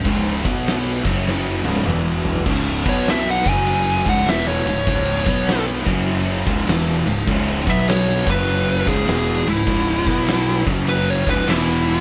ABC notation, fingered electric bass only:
X:1
M:4/4
L:1/8
Q:"Swing" 1/4=100
K:C#m
V:1 name="Fingered electric bass" clef=bass
C,,, B,,,2 F,,,2 C,,, E,,,2 | C,,, B,,,2 F,,,2 C,,, E,,, C,,, | C,,, B,,,2 F,,,2 C,,, E,,, C,,, | C,,, B,,,2 F,,,2 C,,, E,,, C,,, |
C,,, B,,,2 F,,,2 C,,, E,,,2 |]